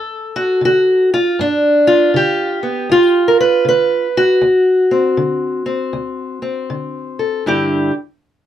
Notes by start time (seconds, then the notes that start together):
Already playing: D2 A4
0.36 F#4
0.61 D3
0.65 F#4
1.14 F4
1.39 G2 D4
1.87 F4
2.14 D3 G4
2.63 B3
2.89 D2 F4
3.28 A#4
3.40 B4
3.65 D3 B4
4.17 F#4
4.41 D2
4.91 C4
5.17 D3
5.66 C4
5.93 D2
6.42 C4
6.70 D3
7.19 A4
7.46 G2 D3 E4 G4